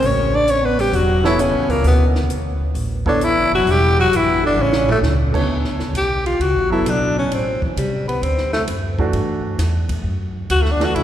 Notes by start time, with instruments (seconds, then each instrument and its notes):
0.02 upright bass A1, baritone saxophone C#4, open hi-hat
0.06 tenor saxophone C#5
0.33 baritone saxophone D4, tenor saxophone D5
0.48 baritone saxophone C#4, tenor saxophone C#5, closed hi-hat
0.63 baritone saxophone B3, tenor saxophone B4
0.79 baritone saxophone G3, tenor saxophone G4, open hi-hat
0.92 upright bass E1, baritone saxophone F#3, tenor saxophone F#4, open hi-hat
1.23 baritone saxophone E3, grand piano B3 E4 A4 C#5, tenor saxophone E4, snare
1.39 baritone saxophone C#3, tenor saxophone C#4, closed hi-hat
1.53 upright bass B1
1.68 upright bass C#2, baritone saxophone A#2, tenor saxophone A#3, open hi-hat
1.84 upright bass D2, baritone saxophone B2, open hi-hat
1.88 tenor saxophone B3
2.15 snare
2.30 closed hi-hat
2.60 muted upright bass stroke
2.74 upright bass A1, open hi-hat
3.06 baritone saxophone D3, grand piano B3 E4 A4 C#5, tenor saxophone D4, kick
3.21 baritone saxophone E3, tenor saxophone E4, closed hi-hat
3.36 upright bass F#1
3.51 upright bass F1, baritone saxophone F#3
3.55 tenor saxophone F#4
3.66 upright bass E1, open hi-hat
3.70 baritone saxophone G3, tenor saxophone G4
3.99 baritone saxophone F#3, tenor saxophone F#4
4.11 upright bass G1, closed hi-hat
4.16 baritone saxophone E3, tenor saxophone E4
4.43 baritone saxophone D3, tenor saxophone D4
4.57 upright bass A1, baritone saxophone C#3
4.62 tenor saxophone C#4
4.72 snare
4.88 baritone saxophone A2, tenor saxophone A3, floor tom
5.02 upright bass C#2, snare
5.32 grand piano D3 B3 E4 A4 C#5, kick, crash
5.47 upright bass D2
5.64 snare
5.79 snare
5.93 upright bass B1, tenor saxophone G4, hi-hat pedal, ride
6.26 tenor saxophone F4, ride
6.39 upright bass C#2, tenor saxophone F#4, ride
6.54 upright bass A1
6.69 upright bass F#1, grand piano F#3 B3 E4 A4, tenor saxophone E4
6.84 upright bass B1, hi-hat pedal, ride
6.89 tenor saxophone D4
7.18 tenor saxophone C#4
7.30 upright bass A1, ride
7.34 tenor saxophone C4
7.62 tenor saxophone E3, muted upright bass stroke, kick
7.76 upright bass C2, tenor saxophone G3, hi-hat pedal, ride
8.08 tenor saxophone B3, ride
8.22 upright bass D2, tenor saxophone C4, ride
8.38 snare
8.53 tenor saxophone A3, snare
8.67 upright bass F#2, hi-hat pedal, ride
8.98 grand piano E3 A3 D4 F#4, kick
9.13 upright bass G2, ride
9.58 upright bass E2, snare, hi-hat pedal, ride
9.89 kick, ride
10.03 upright bass F#2
10.50 upright bass D2, tenor saxophone F#4, hi-hat pedal, ride
10.62 tenor saxophone A3, snare
10.72 tenor saxophone D4
10.80 grand piano E3 A3 D4 F#4, snare, ride
10.84 tenor saxophone F#4
10.95 upright bass C2, tenor saxophone E4, ride